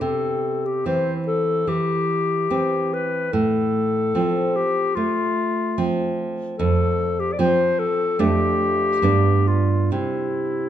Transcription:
0.01 C3 A4
0.66 G4
0.86 E3 C4 C5
1.27 A4
1.67 E3 G4
2.50 E3 C4
2.93 B4
3.33 A2 A4
4.15 F3 C4
4.55 G4
4.95 A3 F4
5.78 F3 C4
6.57 F2 A4
7.19 G4
7.33 D5
7.39 F3 C4 C5
7.79 A4
8.19 F2 A3 D4 G4
9.02 G2 B3 D4
9.47 F4
9.92 C3 E4

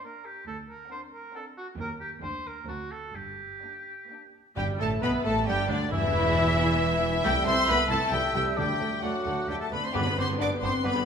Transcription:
0.03 A#3 D4 A#4 D5
0.25 G4
0.47 D2 A4
0.69 A#4
0.90 C4 D4 C5 F#5
1.13 A#4
1.34 C4 D4 A4 F#5
1.58 F#4
1.77 D#2 A#3 G4 A#4 G5
2.00 G4
2.22 D2 A#3 D4 C5 G5
2.47 A#4
2.67 D2 C4 D4 F#4 A5
2.91 A4
3.14 G1 G2 G4
3.62 A#3 D4 G5
4.09 A#3 D4 G5
4.56 G1 G2 G3 G4 G5
4.78 A1 A2 A3 A4 A5
5.01 B1 B2 B3 B4 E5 B5
5.23 A1 A2 A3 A4 A5
5.46 G1 G2 G3 G4 D5 G5
5.69 D2 D3 D4 D5
5.91 E1 E2 G2 E3 E4 B4 E5
6.36 E5
7.23 C2 E3 G3 A3 E4 G4 A4 G5 E6
7.46 C2 E3 A3 C4 E4 A4 C5 C6
7.68 C2 E3 A3 B3 E4 A4 B4 B5
7.89 C2 E3 A3 E4 A4 A5
8.11 C2 E3 G3 A3 E4 G4 A4 G5 E6
8.33 C2 E3 G3 A3 E4 G4 A4 G5
8.56 D2 D3 G3 A3 D4 G4 A4 D5 G5 D6
8.80 D2 D3 A3 D4 A4
9.01 D2 D3 F#3 A3 D4 F#4 A4 D5 F#5 D6
9.26 D2 D3 A3 D4 A4 F#5
9.48 D2 D3 G3 A3 D4 G4 A4 E5 G5
9.60 A3 A4 A5
9.72 D2 D3 A3 B3 D4 A4 B4 D5 B5
9.82 C4 C5
9.86 C6
9.93 G1 G2 D3 B3 D4 G4 B4 D6
9.98 B5
10.05 G2 B3 D4
10.09 D3 B3
10.16 G1 G2 D3 G3 B3 C4 C5 C6 D6
10.27 G2 D4 G4
10.32 D3 B3
10.39 G1 G2 D3 B3 D4 D5 D6
10.50 G2 D3 G3 B3
10.61 G1 G2 D3 B3 C4 D4 G4 C5 C6 D6
10.83 G1 G2 D3 G3 B3 B4 B5 D6
10.94 G2 D3 B3 D4 G4

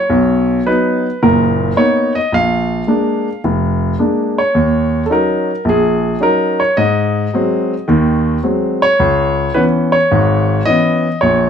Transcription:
Already playing: C#5
0.10 B1
0.66 F#3 B3 D#4 B4
1.23 F#1 A#2 A#4
1.76 A#3 B3 D#4 C#5
2.15 D#5
2.32 A#1 F5
2.87 G#3 A#3 D4
3.44 F1
3.99 G#3 A#3 D4
4.38 C#5
4.55 D#2
5.06 C#4 A4
5.10 F#3 D#4 A#4
5.65 A#1
5.69 G#4
6.20 F#3 C#4 D#4 A#4
6.60 C#5
6.77 G#2 D#5
7.34 F#3 G#3 C4
7.88 D#2 D#3
8.43 F#3 G#3 C4
8.82 C#5
8.99 C#2
9.54 E3 B3 C#4 B4
9.92 C#5
10.11 G#1 G#2
10.65 E3 B3 C#4 D#5
11.21 A#1 C#5

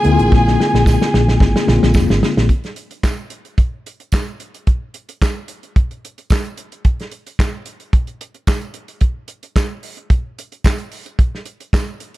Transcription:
Already playing: G#4 G#5
0.02 D2 D3 G#3 A#3 C4 E4, closed hi-hat
0.12 F4
0.19 A1, closed hi-hat
0.32 A#1, kick, snare
0.48 snare
0.60 snare
0.74 A#1, snare
0.86 kick, snare, tambourine
1.02 snare
1.14 A#1, snare
1.28 snare
1.40 G#1, kick, snare
1.56 snare
1.66 A#1 D3 G#3 A#3 C4 F4, snare
1.82 A#1, snare
1.94 F1, kick, snare, tambourine
2.10 G#1, snare
2.23 snare
2.37 A#1, snare
2.49 kick, closed hi-hat
2.64 snare, closed hi-hat
2.76 closed hi-hat
2.91 closed hi-hat
3.03 kick, snare, clap, tambourine
3.30 closed hi-hat
3.45 closed hi-hat
3.58 kick, closed hi-hat
3.86 closed hi-hat
4.00 closed hi-hat
4.12 kick, snare, clap, tambourine
4.40 closed hi-hat
4.54 closed hi-hat
4.67 kick, closed hi-hat
4.94 closed hi-hat
5.09 closed hi-hat
5.22 kick, snare, clap, tambourine
5.48 closed hi-hat
5.63 closed hi-hat
5.76 kick, closed hi-hat
5.91 closed hi-hat
6.05 closed hi-hat
6.18 closed hi-hat
6.30 kick, snare, clap, tambourine
6.44 closed hi-hat
6.57 closed hi-hat
6.72 closed hi-hat
6.85 kick, closed hi-hat
6.99 snare, closed hi-hat
7.11 closed hi-hat
7.26 closed hi-hat
7.39 kick, snare, clap, tambourine
7.65 closed hi-hat
7.80 closed hi-hat
7.93 kick, closed hi-hat
8.07 closed hi-hat
8.21 closed hi-hat
8.34 closed hi-hat
8.47 kick, snare, clap, tambourine
8.61 closed hi-hat
8.74 closed hi-hat
8.88 closed hi-hat
9.01 kick, closed hi-hat
9.28 closed hi-hat
9.43 closed hi-hat
9.56 kick, snare, clap, tambourine
9.83 open hi-hat
9.97 closed hi-hat
10.10 kick, closed hi-hat
10.38 closed hi-hat
10.52 closed hi-hat
10.64 kick, snare, clap, tambourine
10.78 closed hi-hat
10.91 open hi-hat
11.06 closed hi-hat
11.19 kick, closed hi-hat
11.35 snare
11.45 closed hi-hat
11.60 closed hi-hat
11.73 kick, snare, clap, tambourine
12.00 closed hi-hat
12.14 closed hi-hat

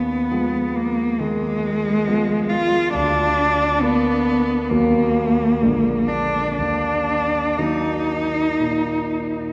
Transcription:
Already playing: D#2 B3
0.31 F3 G#3 B3
0.76 A#3
1.20 D#3 G#3
2.07 F3 G#3 B3
2.49 F4
2.94 D2 D4
3.81 A#3 B3
4.69 D#2 D#3 F#3 A#3
5.62 A#1 D3 G#3 A#3
6.08 D4
6.57 D#2 D4
7.57 D#3 F#3 A#3 D#4
8.59 A#2

